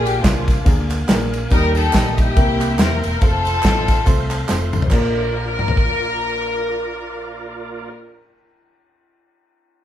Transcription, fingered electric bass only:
0.00 0.17 A#1 loud
0.24 0.60 C2 medium
0.67 1.03 D2 loud
1.09 1.45 A#1 loud
1.52 1.88 D#2 loud
1.95 2.31 A#1 medium
2.37 2.80 C2 medium
2.80 3.00 E2 medium
3.05 3.20 E1 loud
3.22 3.58 F1 loud
3.65 4.01 A1 medium
4.07 4.43 C2 loud
4.50 4.71 F1 medium
4.74 4.90 A1 medium
4.92 7.88 A#1 loud

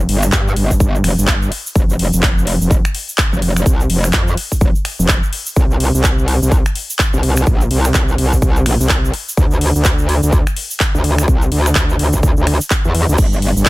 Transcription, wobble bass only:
0.09 0.31 G1 medium
0.33 0.55 G2 loud
0.57 1.03 G1 loud
1.04 1.16 F1 loud
1.18 1.50 G1 loud
1.76 2.11 F1 medium
2.14 2.59 F1 loud
2.61 2.83 F1 loud
3.33 3.64 F1 loud
3.66 3.88 C2 loud
3.90 4.12 F1 loud
4.14 4.36 F2 loud
4.61 4.73 F1 loud
4.99 5.21 F1 loud
5.56 5.92 C2 loud
5.95 6.40 C2 loud
6.42 6.64 C2 loud
7.14 7.45 C2 loud
7.47 7.69 A#1 loud
7.71 7.93 C2 loud
7.95 8.17 C2 loud
8.18 8.64 C2 loud
8.66 8.78 A#1 loud
8.80 9.12 C2 loud
9.37 9.73 D2 loud
9.76 10.21 D2 loud
10.23 10.45 D2 loud
10.95 11.26 D2 loud
11.28 11.50 C2 loud
11.52 11.74 D2 medium
11.76 11.98 D2 loud
11.99 12.35 D2 medium
12.38 12.59 D2 medium
12.85 13.07 E2 loud
13.09 13.17 D2 loud
13.18 13.54 G1 loud
13.56 13.69 G1 loud

